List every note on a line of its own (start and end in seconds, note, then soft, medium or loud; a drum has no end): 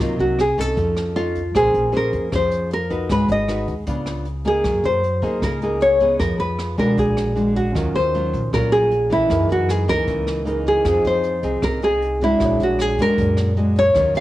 0.00 0.18 C2 medium
0.00 0.76 C3 medium
0.00 0.38 F#3 medium
0.00 0.38 A#3 medium
0.00 0.39 D#4 medium
0.00 0.20 F4 medium
0.19 0.55 C2 medium
0.19 0.40 F#4 medium
0.19 closed hi-hat soft
0.39 0.60 G#4 medium
0.39 cross-stick medium
0.39 closed hi-hat soft
0.58 0.76 C2 medium
0.58 1.13 C#4 medium
0.58 1.13 D#4 medium
0.58 1.13 A4 medium
0.58 1.19 A4 loud
0.58 kick soft
0.58 closed hi-hat soft
0.77 1.51 F2 medium
0.77 1.52 F3 medium
0.77 kick medium
0.77 closed hi-hat medium
0.97 cross-stick medium
0.97 closed hi-hat soft
1.16 1.41 C#4 soft
1.16 1.41 D#4 soft
1.16 1.56 F4 medium
1.16 1.41 A4 medium
1.16 closed hi-hat soft
1.35 kick soft
1.35 closed hi-hat soft
1.55 1.73 A#1 medium
1.55 2.30 A#3 medium
1.55 1.90 C#4 soft
1.55 1.91 G#4 medium
1.55 1.95 G#4 loud
1.55 1.91 C5 medium
1.55 kick medium
1.55 cross-stick medium
1.55 closed hi-hat medium
1.74 2.10 A#1 medium
1.74 closed hi-hat soft
1.92 2.28 C#4 medium
1.92 2.29 G#4 medium
1.92 2.29 C5 medium
1.92 closed hi-hat soft
1.97 2.35 A#4 medium
2.13 2.31 F2 medium
2.13 kick soft
2.13 closed hi-hat soft
2.32 3.06 F2 medium
2.32 3.08 F3 medium
2.32 2.71 C#4 medium
2.32 2.71 G#4 medium
2.32 2.71 C5 medium
2.32 2.70 C5 medium
2.32 kick medium
2.32 cross-stick medium
2.32 closed hi-hat medium
2.51 closed hi-hat soft
2.71 3.11 A#4 medium
2.71 closed hi-hat soft
2.90 3.45 D#4 medium
2.90 3.45 F#4 medium
2.90 3.46 B4 medium
2.90 kick soft
2.90 closed hi-hat soft
3.09 3.28 G#1 medium
3.09 3.85 G#3 medium
3.09 3.29 B4 loud
3.09 kick medium
3.09 cross-stick medium
3.09 closed hi-hat medium
3.28 3.65 G#1 medium
3.28 3.67 D#5 medium
3.28 closed hi-hat soft
3.48 3.73 D#4 medium
3.48 3.74 F#4 medium
3.48 3.74 B4 medium
3.48 cross-stick medium
3.48 closed hi-hat soft
3.67 3.86 D#2 medium
3.67 kick soft
3.67 closed hi-hat soft
3.87 4.61 C#2 medium
3.87 4.63 C#3 medium
3.87 4.26 B3 medium
3.87 4.26 D4 medium
3.87 4.26 F4 medium
3.87 kick medium
3.87 closed hi-hat medium
4.06 cross-stick medium
4.06 closed hi-hat soft
4.25 closed hi-hat soft
4.45 5.00 A#3 medium
4.45 5.00 D#4 medium
4.45 5.01 G#4 medium
4.45 4.86 G#4 medium
4.45 kick soft
4.45 closed hi-hat soft
4.64 4.82 F#2 medium
4.64 5.40 F#3 medium
4.64 kick medium
4.64 cross-stick medium
4.64 closed hi-hat medium
4.84 5.20 F#2 medium
4.84 5.43 C5 medium
4.84 closed hi-hat soft
5.03 closed hi-hat soft
5.22 5.41 C#2 medium
5.22 5.58 A#3 medium
5.22 5.58 D#4 medium
5.22 5.59 G#4 medium
5.22 kick soft
5.22 closed hi-hat soft
5.42 6.16 C#2 medium
5.42 6.18 C#3 soft
5.42 5.82 A#4 medium
5.42 kick medium
5.42 cross-stick medium
5.42 closed hi-hat medium
5.62 5.98 A#3 medium
5.62 5.98 D#4 medium
5.62 5.98 G#4 medium
5.62 closed hi-hat soft
5.80 6.19 C#5 medium
5.80 closed hi-hat soft
6.00 6.75 B3 medium
6.00 6.75 D#4 medium
6.00 6.76 G#4 medium
6.00 kick soft
6.00 closed hi-hat soft
6.19 6.38 F2 medium
6.19 6.96 F3 medium
6.19 6.39 A#4 medium
6.19 kick medium
6.19 cross-stick medium
6.19 closed hi-hat medium
6.38 6.75 F2 medium
6.38 6.76 B4 medium
6.38 closed hi-hat soft
6.59 cross-stick medium
6.59 closed hi-hat soft
6.78 6.96 B2 medium
6.78 7.33 G#3 medium
6.78 7.33 D4 medium
6.78 7.33 F#4 medium
6.78 6.97 A#4 medium
6.78 kick soft
6.78 closed hi-hat soft
6.97 7.71 A#1 medium
6.97 7.73 A#2 medium
6.97 7.56 G#4 medium
6.97 kick medium
6.97 closed hi-hat medium
7.17 cross-stick medium
7.17 closed hi-hat soft
7.36 7.72 G#3 medium
7.36 7.72 D4 soft
7.36 7.72 F#4 medium
7.36 closed hi-hat soft
7.56 7.96 F#4 medium
7.56 kick soft
7.56 closed hi-hat soft
7.72 7.93 D#2 medium
7.72 8.51 D#3 medium
7.72 8.00 F#3 medium
7.72 9.25 C#4 soft
7.72 8.00 C#4 medium
7.72 9.26 F4 soft
7.72 9.27 F#4 soft
7.72 kick medium
7.76 8.01 F4 medium
7.76 9.28 A#4 soft
7.76 cross-stick medium
7.76 closed hi-hat medium
7.95 8.31 D#2 medium
7.95 8.53 C5 medium
7.95 closed hi-hat soft
8.14 8.39 F#3 medium
8.14 8.39 C#4 medium
8.14 8.40 F4 medium
8.14 closed hi-hat soft
8.33 8.51 A#1 medium
8.33 kick soft
8.33 closed hi-hat soft
8.53 9.26 A#1 medium
8.53 9.29 A#2 medium
8.53 8.92 F#3 soft
8.53 8.92 C#4 soft
8.53 8.92 F4 medium
8.53 8.73 A#4 medium
8.53 kick medium
8.53 cross-stick medium
8.53 closed hi-hat medium
8.72 9.12 G#4 medium
8.72 closed hi-hat soft
8.91 closed hi-hat soft
9.10 9.85 E3 medium
9.10 9.85 A#3 medium
9.10 9.48 E4 medium
9.10 kick soft
9.10 closed hi-hat soft
9.26 9.48 F#2 medium
9.26 10.42 D#4 soft
9.30 10.06 F#2 medium
9.30 10.44 G#4 soft
9.30 10.45 A#4 medium
9.30 kick medium
9.30 cross-stick medium
9.30 closed hi-hat medium
9.49 9.85 F#2 medium
9.49 9.70 F#4 medium
9.49 closed hi-hat soft
9.69 9.90 G#4 medium
9.69 cross-stick medium
9.69 closed hi-hat soft
9.88 10.06 C#2 medium
9.88 10.43 E3 medium
9.88 10.44 A#3 medium
9.88 10.44 D#4 medium
9.88 10.43 A#4 loud
9.88 kick soft
9.88 closed hi-hat soft
10.08 10.81 C#2 medium
10.08 10.84 C#3 medium
10.08 kick medium
10.08 closed hi-hat medium
10.27 cross-stick medium
10.27 closed hi-hat soft
10.45 10.83 E3 medium
10.45 10.83 A#3 soft
10.45 10.81 D#4 soft
10.45 10.84 D#4 medium
10.45 10.85 G#4 soft
10.45 10.86 A#4 soft
10.45 closed hi-hat soft
10.66 11.07 G#4 medium
10.66 kick soft
10.66 closed hi-hat soft
10.82 11.03 F2 medium
10.82 11.61 F3 medium
10.82 12.36 D#4 soft
10.82 11.41 D#4 medium
10.82 12.37 F4 soft
10.82 12.38 G#4 soft
10.82 kick medium
10.82 cross-stick medium
10.82 closed hi-hat medium
10.86 11.41 C4 medium
10.86 11.41 G#4 medium
10.86 12.39 C5 soft
11.04 11.41 F2 medium
11.04 11.63 C5 medium
11.04 closed hi-hat soft
11.23 closed hi-hat soft
11.43 11.61 C2 medium
11.43 11.79 C4 medium
11.43 11.79 D#4 medium
11.43 11.80 G#4 medium
11.43 kick soft
11.43 closed hi-hat soft
11.62 12.36 C2 medium
11.62 12.39 C3 medium
11.62 11.83 A#4 medium
11.62 kick medium
11.62 cross-stick medium
11.62 closed hi-hat medium
11.82 12.18 C4 medium
11.82 12.18 D#4 medium
11.82 12.19 G#4 medium
11.82 12.23 G#4 loud
11.82 closed hi-hat soft
12.02 closed hi-hat soft
12.21 12.96 G#3 medium
12.21 12.96 D4 medium
12.21 12.62 E4 medium
12.21 12.96 F#4 medium
12.21 kick soft
12.21 closed hi-hat soft
12.38 12.58 A#1 medium
12.38 13.16 A#2 medium
12.38 13.91 D4 soft
12.38 13.92 F#4 soft
12.38 kick medium
12.38 cross-stick medium
12.38 closed hi-hat medium
12.42 13.93 G#4 soft
12.42 13.94 C#5 medium
12.60 12.96 A#1 medium
12.60 12.81 F#4 medium
12.60 closed hi-hat soft
12.79 13.00 G#4 medium
12.79 cross-stick medium
12.79 closed hi-hat soft
12.98 13.16 F#2 medium
12.98 13.54 G#3 medium
12.98 13.54 D4 medium
12.98 13.54 F#4 medium
12.98 13.55 A#4 loud
12.98 kick soft
12.98 closed hi-hat soft
13.18 13.92 F#2 medium
13.18 13.94 A#2 medium
13.18 kick medium
13.18 closed hi-hat medium
13.37 cross-stick medium
13.37 closed hi-hat soft
13.57 13.82 G#3 soft
13.57 13.82 D4 soft
13.57 13.82 F#4 soft
13.57 closed hi-hat soft
13.76 14.16 C#5 loud
13.76 kick soft
13.76 closed hi-hat soft
13.93 14.14 D#2 medium
13.93 14.20 D#3 medium
13.93 14.20 F#3 soft
13.93 14.20 C#4 soft
13.93 14.20 F4 soft
13.93 14.20 F4 medium
13.93 14.20 A#4 soft
13.93 kick medium
13.93 cross-stick medium
13.93 closed hi-hat medium
13.99 14.20 C#5 soft
14.15 14.20 D#2 medium
14.15 14.20 F5 loud
14.15 closed hi-hat soft